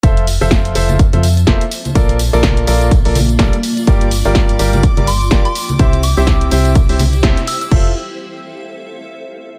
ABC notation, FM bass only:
X:1
M:4/4
L:1/16
Q:"Swing 16ths" 1/4=125
K:F
V:1 name="FM bass" clef=bass
F,,,3 F,,,3 F,,,3 F,,3 F,,, z3 | B,,,3 B,,,3 B,,,3 B,,,3 B,,, z3 | G,,,3 G,,,3 G,,,3 G,,,3 G,,, z3 | C,,3 C,,3 C,,3 C,,3 C,, z3 |
F,,,2 z12 z2 |]